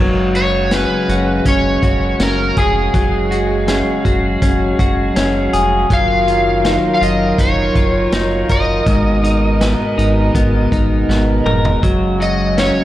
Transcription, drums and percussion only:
0.35 closed hi-hat
0.71 snare, closed hi-hat
1.09 closed hi-hat
1.45 kick, closed hi-hat
1.83 kick, closed hi-hat
2.20 snare, closed hi-hat
2.57 kick, closed hi-hat
2.94 kick, closed hi-hat
3.32 closed hi-hat
3.68 snare, closed hi-hat
4.05 kick, closed hi-hat
4.42 kick, closed hi-hat
4.79 kick, closed hi-hat
5.16 snare, closed hi-hat
5.53 closed hi-hat
5.90 kick, closed hi-hat
6.28 closed hi-hat
6.65 snare, closed hi-hat
7.02 closed hi-hat
7.38 kick, closed hi-hat
7.75 kick, closed hi-hat
8.12 snare, closed hi-hat
8.49 kick, closed hi-hat
8.86 kick, closed hi-hat
9.24 closed hi-hat
9.61 snare, closed hi-hat
9.99 closed hi-hat
10.35 kick, closed hi-hat
10.72 kick, closed hi-hat
11.10 snare
11.46 mid tom
11.65 floor tom
11.83 kick, closed hi-hat
12.21 closed hi-hat
12.58 snare, closed hi-hat

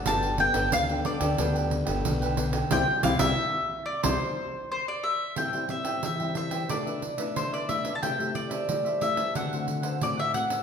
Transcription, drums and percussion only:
0.06 pandeiro
0.23 pandeiro
0.38 pandeiro
0.54 pandeiro
0.72 pandeiro
0.89 pandeiro
1.05 pandeiro
1.21 pandeiro
1.38 pandeiro
1.56 pandeiro
1.71 pandeiro
1.87 pandeiro
2.05 pandeiro
2.22 pandeiro
2.37 pandeiro
2.53 pandeiro
2.71 pandeiro
3.03 pandeiro
3.19 pandeiro
4.04 pandeiro
5.36 pandeiro
5.53 pandeiro
5.69 pandeiro
5.85 pandeiro
6.03 pandeiro
6.20 pandeiro
6.35 pandeiro
6.51 pandeiro
6.69 pandeiro
6.87 pandeiro
7.02 pandeiro
7.18 pandeiro
7.36 pandeiro
7.54 pandeiro
7.69 pandeiro
7.85 pandeiro
8.03 pandeiro
8.20 pandeiro
8.35 pandeiro
8.51 pandeiro
8.69 pandeiro
8.86 pandeiro
9.01 pandeiro
9.17 pandeiro
9.35 pandeiro
9.53 pandeiro
9.68 pandeiro
9.83 pandeiro
10.01 pandeiro
10.19 pandeiro
10.34 pandeiro
10.50 pandeiro

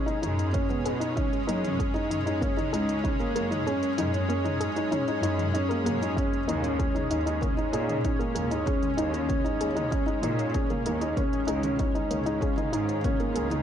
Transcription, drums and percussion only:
0.08 closed hi-hat
0.23 closed hi-hat, mid tom
0.39 closed hi-hat
0.54 kick, closed hi-hat
0.70 closed hi-hat, mid tom
0.86 closed hi-hat
1.01 closed hi-hat
1.17 kick, closed hi-hat, mid tom
1.33 closed hi-hat
1.49 closed hi-hat
1.64 closed hi-hat, mid tom
1.80 kick, closed hi-hat
1.96 closed hi-hat
2.11 closed hi-hat, mid tom
2.27 closed hi-hat
2.42 kick, closed hi-hat
2.58 closed hi-hat, mid tom
2.74 closed hi-hat
2.89 closed hi-hat
3.05 kick, closed hi-hat, mid tom
3.20 closed hi-hat
3.36 closed hi-hat
3.52 closed hi-hat, mid tom
3.67 closed hi-hat
3.83 closed hi-hat
3.98 closed hi-hat, mid tom
4.14 closed hi-hat
4.30 closed hi-hat
4.45 closed hi-hat, mid tom
4.61 closed hi-hat
4.76 closed hi-hat
4.92 closed hi-hat, mid tom
5.08 closed hi-hat
5.23 closed hi-hat
5.39 closed hi-hat, mid tom
5.55 closed hi-hat
5.71 closed hi-hat
5.86 closed hi-hat, mid tom
6.03 closed hi-hat
6.17 kick, closed hi-hat
6.33 closed hi-hat
6.49 closed hi-hat, mid tom
6.64 closed hi-hat
6.80 kick, closed hi-hat
6.96 closed hi-hat, mid tom
7.11 closed hi-hat
7.27 closed hi-hat
7.42 kick, closed hi-hat, mid tom
7.58 closed hi-hat
7.73 closed hi-hat
7.89 closed hi-hat, mid tom
8.05 kick, closed hi-hat
8.21 closed hi-hat
8.36 closed hi-hat, mid tom
8.51 closed hi-hat
8.67 kick, closed hi-hat
8.83 closed hi-hat, mid tom
8.98 closed hi-hat
9.14 closed hi-hat
9.30 kick, closed hi-hat, mid tom
9.46 closed hi-hat
9.61 closed hi-hat
9.77 closed hi-hat, mid tom
9.92 kick, closed hi-hat
10.08 closed hi-hat
10.23 closed hi-hat, mid tom
10.39 closed hi-hat
10.54 kick, closed hi-hat
10.70 closed hi-hat, mid tom
10.86 closed hi-hat
11.01 closed hi-hat
11.17 kick, closed hi-hat, mid tom
11.33 closed hi-hat
11.48 closed hi-hat
11.63 closed hi-hat, mid tom
11.79 kick, closed hi-hat
11.95 closed hi-hat
12.11 closed hi-hat, mid tom
12.26 closed hi-hat
12.42 kick, closed hi-hat
12.58 closed hi-hat, mid tom
12.73 closed hi-hat
12.89 closed hi-hat
13.04 kick, closed hi-hat, mid tom
13.20 closed hi-hat
13.36 closed hi-hat
13.51 closed hi-hat, mid tom

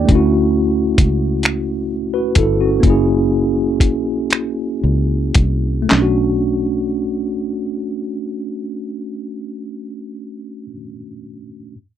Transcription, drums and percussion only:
0.09 kick, closed hi-hat
0.98 kick, closed hi-hat
1.43 finger snap, closed hi-hat
2.35 kick, closed hi-hat
2.83 kick, closed hi-hat
3.80 kick, closed hi-hat
4.30 finger snap, closed hi-hat
5.34 kick, closed hi-hat
5.90 snare, clap

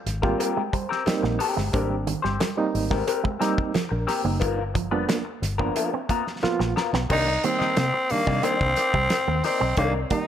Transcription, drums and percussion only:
0.07 snare, closed hi-hat
0.23 kick
0.40 closed hi-hat, cowbell
0.73 kick, closed hi-hat
0.92 snare
1.06 snare, closed hi-hat, cowbell
1.24 snare
1.40 open hi-hat
1.58 snare
1.73 kick, closed hi-hat, cowbell
2.07 closed hi-hat
2.25 snare
2.40 snare, closed hi-hat, cowbell
2.75 open hi-hat
2.91 kick, snare
3.08 closed hi-hat, cowbell
3.25 kick
3.42 snare, closed hi-hat
3.58 kick
3.74 snare, closed hi-hat, cowbell
4.08 snare, open hi-hat
4.41 kick, closed hi-hat, cowbell
4.75 kick, closed hi-hat
5.09 snare, closed hi-hat, cowbell
5.43 snare, closed hi-hat
5.59 kick
5.76 closed hi-hat, cowbell
6.09 kick, closed hi-hat
6.27 snare
6.43 snare, cowbell
6.60 snare
6.77 snare
6.94 snare
7.10 kick, crash, cowbell
7.44 closed hi-hat
7.61 snare
7.76 snare, closed hi-hat, cowbell
8.10 open hi-hat
8.26 kick, snare
8.43 closed hi-hat, cowbell
8.61 kick
8.76 snare, closed hi-hat
8.94 kick
9.10 snare, closed hi-hat, cowbell
9.44 snare, open hi-hat
9.77 kick, closed hi-hat, cowbell
10.10 kick, closed hi-hat

